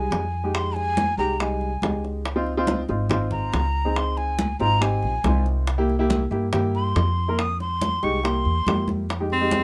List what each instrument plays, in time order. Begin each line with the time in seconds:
Already playing: upright piano G3 G#3 D#4, flute G#5
0.11 upright bass F2, high bongo, low bongo, high conga
0.44 upright piano G#3 D#4 G4
0.54 flute C6, high bongo, high conga
0.75 flute G#5, high bongo, high conga
0.97 high bongo, high conga
1.18 upright bass C2, upright piano G#3 D#4 G4, flute A#5, high bongo, high conga
1.40 upright piano G3 G#3 D#4, flute G#5, high bongo, high conga
1.61 high conga
1.82 upright bass C#2, upright piano G#3 D#4 G4, high bongo, low bongo, high conga
2.04 high bongo
2.25 high bongo, high conga
2.36 upright piano C4 D#4 F4
2.46 high conga
2.57 upright piano C4 D#4 F4
2.67 high bongo, high conga
2.89 upright bass G#1, upright piano C4 D#4 F4, high conga
3.10 upright piano C4 D#4 F4, high bongo, high conga, low conga
3.31 flute A#5, high conga, low conga
3.52 upright bass C#2, high bongo, low bongo, high conga
3.85 upright piano C4 D#4 G#4
3.96 flute C6, high bongo, high conga
4.17 flute G#5, high bongo, high conga
4.39 high bongo, high conga
4.59 upright bass G#1, upright piano C4 D#4 F4, flute A#5, high bongo, high conga
4.81 upright piano C4 D#4 G4, flute G#5, high bongo, high conga
5.03 upright bass A#1, high conga
5.24 upright bass C2, upright piano C4 D#4 F4, high bongo, low bongo, high conga
5.46 high bongo
5.67 high bongo, high conga
5.78 upright piano A#3 E4 G4
5.90 high conga
5.99 upright piano A#3 E4 G4
6.10 high bongo, high conga
6.31 upright bass G2, upright piano A#3 E4 G4, high conga
6.52 upright piano A#3 E4 G4, high bongo, high conga, low conga
6.75 flute C6, high conga
6.96 upright bass F2, high bongo, low bongo, high conga
7.28 upright piano A#3 E4 A#4
7.39 flute D#6, high bongo, high conga
7.60 flute C6, high bongo, high conga
7.81 high bongo, high conga
8.03 upright bass C2, upright piano G#3 D#4 G4, flute C#6, high bongo, high conga
8.23 upright piano A#3 E4 G4, flute C6, high bongo, high conga
8.45 upright bass E2, high conga
8.66 upright bass F2, upright piano A#3 E4 G4, high bongo, low bongo, high conga
8.88 high bongo, high conga
9.09 high bongo, high conga
9.20 upright piano G#3 D#4 G4
9.30 tenor saxophone C4, flute C5, high conga
9.41 upright piano G#3 D#4 G4
9.51 high bongo, high conga